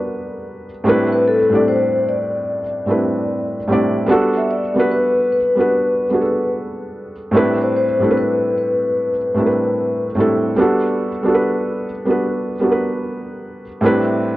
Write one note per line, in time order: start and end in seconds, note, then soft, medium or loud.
0.00 0.85 G3 medium
0.00 0.87 B3 medium
0.00 0.87 D4 medium
0.00 0.88 F#4 medium
0.00 0.87 A4 medium
0.00 0.87 A#4 medium
0.00 0.87 B4 medium
0.84 1.35 A2 medium
0.84 1.35 G3 medium
0.84 1.36 C4 medium
0.84 1.36 D4 loud
0.84 1.37 E4 medium
0.89 1.38 B4 loud
1.12 1.27 B4 medium
1.28 1.63 A4 medium
1.50 2.61 A2 medium
1.50 2.61 G3 medium
1.50 2.62 C4 medium
1.50 2.62 D4 medium
1.54 2.63 E4 medium
1.54 2.64 D5 medium
1.68 2.08 C5 medium
2.09 4.07 D5 medium
2.86 3.56 A2 medium
2.86 3.56 G3 medium
2.86 3.57 C4 medium
2.86 3.57 D4 medium
2.90 3.58 E4 medium
2.90 3.58 B4 medium
3.67 4.03 A2 medium
3.67 4.03 G3 medium
3.67 4.04 C4 medium
3.67 4.04 D4 medium
3.67 4.05 E4 medium
3.72 4.05 D5 loud
4.06 4.58 G3 loud
4.06 4.59 B3 medium
4.06 4.60 D4 medium
4.11 4.60 F#4 loud
4.11 4.61 A4 loud
4.37 4.50 E5 medium
4.51 4.87 D5 medium
4.74 5.35 G3 medium
4.74 5.36 B3 medium
4.74 5.36 D4 medium
4.78 5.37 F#4 medium
4.78 5.38 B4 loud
4.92 5.28 B4 medium
5.32 6.49 B4 medium
5.55 6.02 G3 medium
5.55 6.03 B3 medium
5.55 6.04 D4 medium
5.55 6.04 F#4 medium
5.60 6.05 B4 medium
6.10 7.12 G3 medium
6.10 7.12 B3 medium
6.10 7.13 D4 medium
6.14 7.14 F#4 medium
6.14 6.22 G#4 medium
6.21 7.18 A4 medium
7.31 7.83 A2 loud
7.31 7.84 G3 medium
7.31 7.84 C4 medium
7.31 7.85 D4 medium
7.35 7.85 E4 medium
7.35 7.86 B4 loud
7.61 7.74 C5 medium
7.76 8.12 C5 medium
7.99 9.10 A2 medium
7.99 9.10 G3 medium
7.99 9.11 C4 medium
7.99 9.11 D4 medium
7.99 9.12 E4 medium
8.04 8.07 A4 medium
8.11 9.16 B4 medium
8.17 8.53 B4 medium
8.58 10.00 B4 medium
9.34 10.04 A2 medium
9.34 10.05 G3 medium
9.34 10.06 C4 medium
9.34 10.06 D4 medium
9.39 10.07 E4 medium
9.39 9.46 A#4 medium
9.46 10.10 B4 medium
10.15 10.51 A2 medium
10.15 10.51 G3 medium
10.15 10.52 C4 medium
10.15 10.53 D4 medium
10.19 10.53 E4 medium
10.19 10.54 A4 medium
10.56 11.08 G3 loud
10.56 11.08 B3 medium
10.56 11.09 D4 medium
10.56 11.10 F#4 medium
10.62 11.10 A4 medium
11.23 11.84 G3 medium
11.23 11.84 B3 medium
11.23 11.85 D4 medium
11.23 11.85 F#4 medium
11.28 11.31 A4 medium
11.34 11.89 B4 medium
12.05 12.52 G3 medium
12.05 12.52 B3 medium
12.05 12.53 D4 medium
12.05 12.54 F#4 medium
12.10 12.54 B4 medium
12.60 13.61 G3 medium
12.60 13.62 B3 medium
12.60 13.62 D4 medium
12.60 13.63 F#4 medium
12.65 12.71 A#4 medium
12.72 13.67 B4 medium
13.81 14.32 A2 loud
13.81 14.33 G3 medium
13.81 14.33 C4 medium
13.81 14.34 D4 medium
13.81 14.34 E4 medium
13.86 14.35 B4 loud